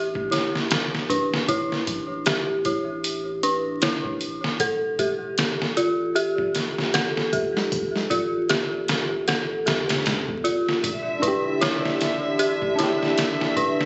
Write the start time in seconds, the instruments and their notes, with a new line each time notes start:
Already playing: sub bass A1, synth bell D4 E4 G4
0.15 kick
0.31 synth bell E4, snare, closed hi-hat
0.55 snare
0.71 snare, closed hi-hat
0.95 snare
1.10 synth bell D4, kick, closed hi-hat
1.34 snare
1.48 synth bell E4, kick, closed hi-hat
1.72 snare
1.87 kick, closed hi-hat
2.26 synth bell G4, snare, closed hi-hat
2.65 sub bass A1, synth bell E4, kick, closed hi-hat
3.04 closed hi-hat
3.43 synth bell D4, closed hi-hat
3.82 synth bell E4, snare, closed hi-hat
4.05 kick
4.21 closed hi-hat
4.44 snare
4.60 sub bass E1, synth bell A4, kick, closed hi-hat
4.99 synth bell G4, kick, closed hi-hat
5.38 snare, closed hi-hat
5.62 snare
5.77 sub bass A1, synth bell F4, closed hi-hat
6.15 synth bell G4, closed hi-hat
6.38 kick
6.55 snare, closed hi-hat
6.78 snare
6.94 synth bell A4, snare, closed hi-hat
7.17 snare
7.33 synth bell G4, kick, closed hi-hat
7.57 snare
7.72 kick, closed hi-hat
7.96 snare
8.10 synth bell F4, kick, closed hi-hat
8.49 synth bell G4, snare, closed hi-hat
8.88 sub bass A1, snare, closed hi-hat
9.28 synth bell A4, snare, closed hi-hat
9.66 sub bass E2, synth bell G4, snare, closed hi-hat
9.89 snare, closed hi-hat
10.06 snare, closed hi-hat
10.28 kick
10.44 sub bass D1, synth bell F4, closed hi-hat
10.69 snare
10.84 sub bass E1, string section D3 E5, kick, closed hi-hat
11.20 tine electric piano D4 E4, synth bell D4, kick, closed hi-hat
11.28 tine electric piano G4
11.61 synth bell E4, snare, closed hi-hat
11.85 snare
12.01 sub bass A1, snare, closed hi-hat
12.39 synth bell G4, closed hi-hat
12.62 kick
12.76 tine electric piano D4, synth bell E4, closed hi-hat
12.80 tine electric piano E4 G4, snare
13.03 snare
13.18 snare, closed hi-hat
13.41 snare
13.56 synth bell D4, kick, closed hi-hat
13.81 snare